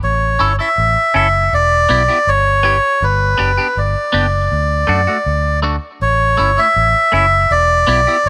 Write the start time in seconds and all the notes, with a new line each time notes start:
0.03 A1 C#5
0.39 G1 C#4 E4 A4
0.59 C#4 E4 A4 E5
0.78 A1
1.14 F#1 C#4 E4 A4 E5
1.53 E1 D5
1.89 B1 B3 E4 G4
2.08 B3 E4 G4
2.27 G1 C#5
2.63 B3 E4 G4
3.02 G1 B4
3.38 F#1 B3 D4 G4
3.57 B3 D4 G4
3.77 G1 D5
4.12 F#1 B3 D4 G4
4.52 D2
4.87 F#2 A3 D4 F#4
5.07 A3 D4 F#4
5.26 D2
5.63 A3 D4 F#4
6.02 A1 C#5
6.37 G1 A3 C#4 E4
6.57 A3 C#4 E4 E5
6.76 A1
7.12 F#1 A3 C#4 E4 E5
7.51 E1 D5
7.87 B1 B3 E4 G4
8.07 B3 E4 G4
8.26 G1